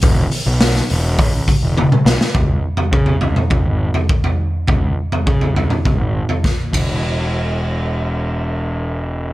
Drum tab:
RD |----------------|----------------|--------------x-|----------------|
HH |o-o-o-o-o-o-----|----------------|----------------|----------------|
SD |----oo--------oo|----------------|------------o---|----------------|
T1 |------------o---|----------------|----------------|----------------|
T2 |-------------o--|-------o--------|-------o--------|----------------|
FT |----------------|o--o-oooo--o-o--|o--o-oooo--o----|----------------|
BD |o-------o-o-----|o---o---o---o---|o---o---o---o-o-|----------------|